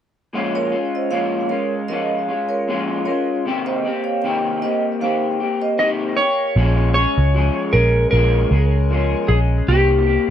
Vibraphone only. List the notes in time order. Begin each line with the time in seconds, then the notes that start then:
0.55 A#4 C#5
0.95 C5 D#5
1.11 C#5 F5
1.49 A#4 C#5
1.88 A#4 D#5
2.49 A#4 C#5
3.05 A#4 C#5
3.66 C5 D#5
4.04 C#5 F5
4.22 D#5 G5
4.62 C5 D#5
5.01 C5 F5
5.62 C5 D#5